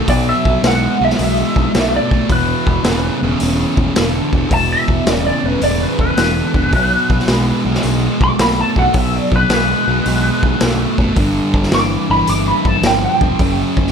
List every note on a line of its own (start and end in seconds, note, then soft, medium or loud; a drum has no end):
0.08 0.31 B1 loud
0.08 0.60 B2 medium
0.08 0.60 F#3 medium
0.08 0.29 D5 medium
0.08 kick loud
0.08 open hi-hat medium
0.29 0.63 E5 medium
0.45 0.57 B1 medium
0.45 kick medium
0.63 0.87 B1 medium
0.63 0.97 B2 medium
0.63 0.97 G#3 medium
0.63 snare loud
0.63 open hi-hat medium
0.67 1.01 F#5 medium
1.01 1.12 B1 medium
1.01 1.17 B2 medium
1.01 1.17 G#3 medium
1.05 1.20 E5 medium
1.10 snare soft
1.18 1.42 B1 medium
1.18 1.70 B2 medium
1.18 1.70 G#3 medium
1.18 open hi-hat medium
1.22 1.92 E5 medium
1.56 1.67 B1 medium
1.56 kick medium
1.74 1.98 B1 medium
1.74 2.08 B2 medium
1.74 2.08 A3 medium
1.74 snare loud
1.74 open hi-hat soft
1.96 2.30 D5 medium
2.11 2.22 B1 medium
2.11 2.28 B2 medium
2.11 2.28 A3 medium
2.11 kick medium
2.30 2.53 E1 medium
2.30 2.81 E2 medium
2.30 2.82 B2 medium
2.30 3.38 B4 loud
2.30 kick loud
2.30 open hi-hat medium
2.67 2.78 E1 medium
2.67 kick medium
2.84 3.08 E1 medium
2.84 3.18 E2 medium
2.84 3.19 C#3 medium
2.84 snare loud
2.84 open hi-hat soft
3.22 3.34 E1 medium
3.22 3.38 E2 medium
3.22 3.39 C#3 medium
3.40 3.64 E1 medium
3.40 3.92 E2 medium
3.40 3.93 C#3 medium
3.40 open hi-hat medium
3.77 3.89 E1 medium
3.77 kick medium
3.96 4.20 E1 medium
3.96 4.29 E2 medium
3.96 4.29 D3 medium
3.96 snare loud
3.96 open hi-hat medium
4.33 4.44 E1 medium
4.33 4.49 E2 medium
4.33 4.49 D3 medium
4.33 kick medium
4.51 4.74 E1 medium
4.51 5.03 E2 medium
4.51 5.03 B2 medium
4.51 4.70 A5 loud
4.51 kick loud
4.51 open hi-hat medium
4.72 5.12 E5 medium
4.88 5.00 E1 medium
4.88 kick medium
5.07 5.30 E1 medium
5.07 5.41 E2 medium
5.07 5.41 C#3 medium
5.07 snare loud
5.07 open hi-hat medium
5.12 5.25 D5 medium
5.27 5.46 D5 medium
5.44 5.55 E1 medium
5.44 5.60 E2 medium
5.44 5.61 C#3 medium
5.44 5.62 B4 medium
5.62 5.85 E1 medium
5.62 6.14 E2 medium
5.62 6.14 C#3 loud
5.62 5.83 D5 medium
5.62 open hi-hat soft
5.83 6.00 B4 medium
5.99 6.10 E1 medium
5.99 7.62 B4 medium
5.99 kick medium
6.17 6.40 E1 medium
6.17 6.51 E2 medium
6.17 6.51 D3 medium
6.17 snare loud
6.17 open hi-hat medium
6.54 6.73 E1 medium
6.54 6.71 E2 medium
6.54 6.71 D3 medium
6.54 kick medium
6.73 6.96 B1 medium
6.73 7.25 B2 medium
6.73 7.25 F#3 medium
6.73 kick loud
6.73 open hi-hat medium
7.10 7.21 B1 medium
7.10 kick medium
7.20 snare soft
7.28 7.51 B1 medium
7.28 7.62 B2 medium
7.28 7.62 G#3 medium
7.28 snare medium
7.28 open hi-hat soft
7.65 7.76 B1 medium
7.65 7.82 B2 medium
7.65 7.82 G#3 medium
7.75 snare soft
7.83 8.07 B1 medium
7.83 8.35 B2 medium
7.83 8.36 G#3 medium
7.83 open hi-hat soft
8.21 8.32 B1 medium
8.21 8.40 D6 loud
8.21 kick medium
8.39 8.62 B1 medium
8.39 8.73 B2 medium
8.39 8.73 A3 medium
8.39 8.58 B5 medium
8.39 snare loud
8.39 open hi-hat medium
8.61 8.77 A5 medium
8.76 8.88 B1 medium
8.76 8.93 B2 medium
8.76 8.93 A3 medium
8.76 8.97 F#5 medium
8.76 kick medium
8.94 9.17 B1 medium
8.94 9.47 B2 medium
8.94 9.47 F#3 medium
8.94 9.16 E5 loud
8.94 kick loud
8.94 open hi-hat medium
9.16 9.33 D5 medium
9.32 9.43 B1 medium
9.32 9.52 B4 medium
9.32 kick medium
9.49 9.73 B1 medium
9.49 9.84 B2 medium
9.49 9.84 G#3 medium
9.49 snare loud
9.49 open hi-hat medium
9.54 10.60 B4 medium
9.87 9.99 B1 medium
9.87 10.04 B2 medium
9.87 10.04 G#3 medium
10.06 10.29 B1 medium
10.06 10.58 B2 medium
10.06 10.58 G#3 medium
10.06 open hi-hat medium
10.43 10.54 B1 medium
10.43 kick medium
10.60 10.85 B1 medium
10.60 10.95 B2 medium
10.60 10.96 A3 medium
10.60 snare loud
10.60 open hi-hat medium
10.98 11.10 F#1 medium
10.98 11.15 B2 medium
10.98 11.16 A3 medium
10.98 kick medium
11.16 11.40 G1 medium
11.16 11.69 G2 medium
11.16 11.69 D3 medium
11.16 kick loud
11.16 open hi-hat medium
11.54 11.65 G1 medium
11.54 kick medium
11.63 snare soft
11.72 11.95 G1 medium
11.72 12.06 G2 medium
11.72 12.06 E3 medium
11.72 12.09 D6 medium
11.72 snare loud
11.72 open hi-hat soft
12.09 12.21 G1 medium
12.09 12.26 G2 medium
12.09 12.27 E3 medium
12.09 12.30 B5 loud
12.27 12.51 G1 medium
12.27 12.80 G2 medium
12.27 12.80 E3 medium
12.27 12.48 D6 medium
12.27 open hi-hat soft
12.48 12.67 B5 medium
12.65 12.77 G1 medium
12.65 12.84 A5 medium
12.65 kick medium
12.82 13.06 G1 medium
12.82 13.17 G2 medium
12.82 13.18 F3 medium
12.82 snare loud
12.82 open hi-hat medium
12.87 13.03 G5 medium
13.05 13.57 G5 loud
13.21 13.33 E1 medium
13.21 13.37 G2 medium
13.21 13.38 F3 medium
13.21 kick medium
13.39 13.63 F#1 medium
13.39 13.91 F#2 medium
13.39 13.92 C#3 medium
13.39 kick loud
13.39 open hi-hat medium
13.77 13.88 F#1 medium
13.77 kick medium
13.87 snare soft